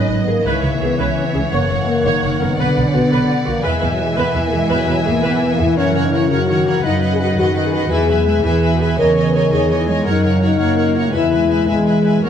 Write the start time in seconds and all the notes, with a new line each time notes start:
Already playing: G#2 D#3 F#3 B4 D#5 B5
0.09 G#1 D#4 B4
0.20 B3
0.27 G#1 A#3 B3 G#4
0.44 C#2 C#3 E3 G#3 B4 C#5 E5
0.63 C#2 G#3 B4
0.74 A#3
0.81 C#2 B3 E4 G#4
0.99 C#2 C#4 B4 C#5
1.17 B4
1.25 B3
1.34 C#2 C#4 G#4
1.52 F#1 F#2 A#3 C#5 F#5
1.70 F#1 C#3 C#5
1.78 G#3
1.87 A#3 F#4
2.06 F#1 D#3 C#5
2.24 F#1 A#4 C#5
2.41 F#1 B3 C#4 A#4
2.58 B1 B2 D3 B3 B4 D5
2.76 B1 F#3 B4
2.87 C#4
2.94 B1 B3 F#4
3.12 B1 B4
3.30 D5
3.47 B1 A#3 B3 F#4
3.64 E2 E3 G#3 B4 E5 G#5
3.82 E2 B2 B4
3.92 F#3
4.00 G#3 E4
4.18 E2 B3 B4
4.35 E2 E4 B4
4.46 A#3
4.53 E2 G#3 B3 G#4
4.70 E2 F#3 B4
4.88 E2 B2 B4
4.99 G#3
5.05 E2 A#3 E4 G#4
5.23 E2 B3 B4
5.42 E4
5.53 A#3
5.59 E2 B3 E4 G#4
5.77 F#2 C#4 A#4 C#5 F#5
5.94 C#3 A#4 C#5 F#5
6.05 D#4
6.12 C#4 E4 A#4 C#5 F#5
6.30 F#2 C#3 F#4 A#4 C#5 F#5
6.48 D#3 F#4 A#4 C#5 F#5
6.66 E3 A#3 A#4 C#5 F#5
6.84 F#2 F#3 D#4 B4 D#5 F#5
7.01 F#3 B4 D#5 F#5
7.13 G#4
7.19 D#4 F#4 B4 D#5 F#5
7.37 F#2 D#3 F#4 B4 D#5 F#5
7.55 F#4 B4 D#5 F#5
7.67 G#4
7.73 B3 F#4 B4 D#5 F#5
7.90 E2 E3 G#4 B4 E5 G#5
8.08 B2 F#3 B4 E5 G#5
8.26 G#3 E4 B4 E5 G#5
8.44 E2 E3 G#4 B4 E5 G#5
8.63 G#4 B4 E5 G#5
8.73 F#4
8.81 B3 G#4 B4 E5 G#5
8.98 E2 C#3 A#4 C#5 D#5 G#5
9.16 E3 C#5 D#5 G#5
9.27 B4
9.35 D#4 A#4 C#5 D#5 G#5
9.52 E2 D#3 G#4 C#5 D#5 G#5
9.71 E3 G#4 C#5 D#5 G#5
9.88 G#3 C#4 C#5 D#5 G#5
10.06 F#2 F#3 D#4 A#4 C#5 F#5
10.24 C#3 A#4 C#5 F#5
10.35 C#4
10.41 D#4 F#4 A#4 C#5 F#5
10.59 F#2 A#3 A#4 C#5 F#5
10.78 A#4 C#5 F#5
10.96 C#4 E4 A#4 C#5 F#5
11.13 E2 G#3 E4 B4 E5 G#5
11.32 B2 B4 E5 G#5
11.50 G#4 B4 E5 G#5
11.68 E2 G#3 B4 E5 G#5
11.87 B4 E5 G#5
12.05 E4 B4 E5 G#5
12.23 F#2 F#3 A#3 A#4 C#5 F#5